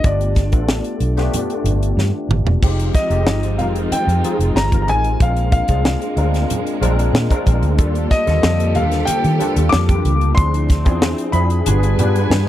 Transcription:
0.04 G1 A3 B3 D4 F4 G4 D5, kick, closed hi-hat
0.21 closed hi-hat
0.35 kick, snare, closed hi-hat, muted conga
0.52 A1 A3 B3 D4 F4 A4, kick, closed hi-hat
0.69 snare, high conga
0.84 closed hi-hat
1.00 B1, closed hi-hat
1.16 A3 B3 D4 F4 G4, snare, closed hi-hat
1.34 closed hi-hat, muted conga, low conga
1.50 closed hi-hat
1.64 G1, closed hi-hat, muted conga, low conga
1.83 closed hi-hat
1.97 G2, snare, high conga
2.29 G1, mid tom, high conga
2.45 E1, floor tom
2.61 F1 F3 G#3 C4 D#4 F4 G4, kick, crash
2.79 closed hi-hat
2.94 D#5, kick, snare, closed hi-hat, muted conga
3.10 F1 G#3 C4 D#4 F4 G4, closed hi-hat
3.26 G1, snare, high conga
3.43 closed hi-hat
3.58 F1 G#3 C4 D#4 F4 A#4 F5, closed hi-hat, low conga
3.76 closed hi-hat
3.91 G5, muted fingered electric bass stroke, closed hi-hat, muted conga
4.07 F2, closed hi-hat
4.24 G#3 C4 D#4 F4 G#4, closed hi-hat, muted conga
4.39 F1, closed hi-hat
4.55 G1 A#5, snare, high conga
4.72 G#3 C4 D#4 F4 A#4, kick, closed hi-hat, high conga
4.82 A#5
4.87 A1 G#5, closed hi-hat, high conga
5.04 closed hi-hat
5.20 A#1 G#3 A#3 C4 D4 F4 A#4 F5, kick, closed hi-hat
5.37 closed hi-hat
5.52 F5, kick, closed hi-hat
5.68 C2 G#3 C4 D4 F4 G#4, kick, closed hi-hat
5.85 snare, high conga
6.02 closed hi-hat
6.16 D2 G#3 C4 D4 F4 A#4, closed hi-hat
6.34 snare, closed hi-hat
6.50 closed hi-hat, muted conga, low conga
6.67 closed hi-hat
6.81 A#1 G#3 C4 D4 F4 A#4, closed hi-hat, muted conga, low conga
6.99 closed hi-hat
7.13 A#2, snare, high conga
7.30 G#3 C4 D4 F4 A#4, kick, closed hi-hat, high conga
7.46 A#1, kick, closed hi-hat, high conga
7.62 D2, closed hi-hat
7.78 D#2 F3 G3 A#3 D4 F4 G4 A4, kick, closed hi-hat
7.95 closed hi-hat
8.10 D#5, kick, snare, closed hi-hat, muted conga
8.26 D#2 D3 G3 A#3 F4 A4, snare, closed hi-hat
8.43 F2, snare, high conga
8.60 closed hi-hat
8.74 D#2 G3 A#3 D4 F4 A4 F5, closed hi-hat, low conga
8.91 snare, closed hi-hat
9.05 G5, muted fingered electric bass stroke, closed hi-hat
9.10 muted conga
9.24 D#3, closed hi-hat
9.39 G3 A#3 D4 F4 A4, closed hi-hat, muted conga
9.56 D#2, closed hi-hat
9.69 F2 D6, snare
9.74 high conga
9.88 G3 A#3 D4 F4 G4, kick, closed hi-hat, high conga
10.05 C#2, closed hi-hat, high conga
10.21 closed hi-hat
10.35 D2 F3 C4 D4 E4 G#4 C6, kick, closed hi-hat
10.54 closed hi-hat
10.69 kick, snare, closed hi-hat, muted conga
10.85 E2 C4 D4 E4 F4 G#4, kick, closed hi-hat
11.02 snare, high conga
11.18 closed hi-hat
11.32 F2 F3 C4 D4 E4 G#4 B5, closed hi-hat
11.50 closed hi-hat
11.65 G1 G3 B3 D4 F4 G#4 B4 G#5, closed hi-hat, muted conga, low conga
11.83 closed hi-hat
11.98 G2 G3 B3 D4 F4 B4, closed hi-hat, muted conga, low conga
12.16 closed hi-hat
12.30 G2, snare, high conga

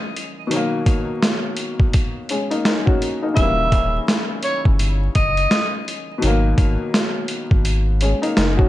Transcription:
Already playing: C#3 E3 G3 A#3
0.16 closed hi-hat
0.47 B2 D#3
0.51 F#3, closed hi-hat
0.55 A#3
0.86 kick, closed hi-hat
1.23 snare, closed hi-hat
1.57 closed hi-hat
1.80 kick
1.93 kick, closed hi-hat
2.29 G#3 C#4, closed hi-hat
2.50 A#3 D#4, closed hi-hat
2.65 D#4 A#4, snare, closed hi-hat
2.86 C#4 F#4, kick
3.02 closed hi-hat
3.22 A#3 D#4
3.34 D#1 C#3 E3 E5, kick, closed hi-hat
3.39 G3 A#3
3.72 kick, closed hi-hat
4.08 snare, closed hi-hat
4.43 C#5, closed hi-hat
4.65 G1, kick
4.79 closed hi-hat
5.15 F#1 D#5, kick, closed hi-hat
5.37 closed hi-hat
5.51 snare, closed hi-hat
5.88 closed hi-hat
6.18 B2 D#3
6.22 G#1 F#3, closed hi-hat
6.27 A#3
6.58 G#1, kick, closed hi-hat
6.94 snare, closed hi-hat
7.28 closed hi-hat
7.51 G#1, kick
7.65 closed hi-hat
8.01 G#3 C#4, closed hi-hat
8.22 A#3 D#4, closed hi-hat
8.37 F#1 D#4 A#4, snare, closed hi-hat
8.57 C#4 F#4, kick

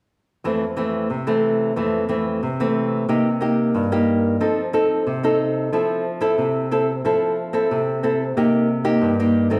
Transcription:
0.44 F2 E3 A3 C4
0.77 E3 A3 C4
1.10 C3
1.27 E3 A3 C4
1.76 F2 E3 A3 C4
2.09 E3 A3 C4
2.43 C3
2.60 E3 A3 C4
3.09 C3 A#3 D#4 G4
3.41 A#3 D#4 G4
3.74 G2
3.92 A#3 D#4 G4
4.40 F3 C4 D#4 A4
4.73 C4 D#4 A4
5.07 C3
5.23 C4 D#4 A4
5.72 F3 C4 E4 A4
6.21 C4 E4 A4
6.38 C3
6.71 C4 E4 A4
7.05 F3 C4 E4 A4
7.53 C4 E4 A4
7.71 C3
8.03 C4 E4 A4
8.37 C3 A#3 D#4 G4
8.84 A#3 D#4 G4
9.01 G2
9.20 A#3 D#4 G4
9.50 D#3 A3 C4

